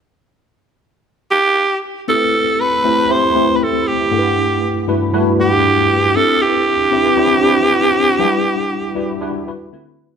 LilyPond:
<<
  \new Staff \with { instrumentName = "Alto saxophone" } { \time 4/4 \key a \dorian \tempo 4 = 118 r2 r8 g'4 r8 | a'4 b'4 c''8.~ c''32 b'32 a'8 g'8~ | g'4. r4 g'4. | a'8 g'2.~ g'8~ |
g'2. r4 | }
  \new Staff \with { instrumentName = "Tine electric piano" } { \time 4/4 \key a \dorian r1 | <a c' e' g' b'>4 r8 <a c' e' g' c''>8 <a c' e' g' c''>8 <a c' e' g' b'>4 r8 | <g, a d' e' a' b' fis''>4 r8 <g, a d' e' fis' b'>8 <g, a d' e' fis' b'>8 <g, a d' e' b' fis''>4 r8 | <c' d' e' g' b'>4 r8 <c' d' e' g' b'>8 <c' d' e' g' c''>8 <c' d' e' g' b'>4 r8 |
<fis g d' e' b' fis''>4 r8 <g d' e' fis' b'>8 <g d' e' fis' b'>8 <g d' e' fis' b'>8 <d a c' e' f' fis' b'>4 | }
>>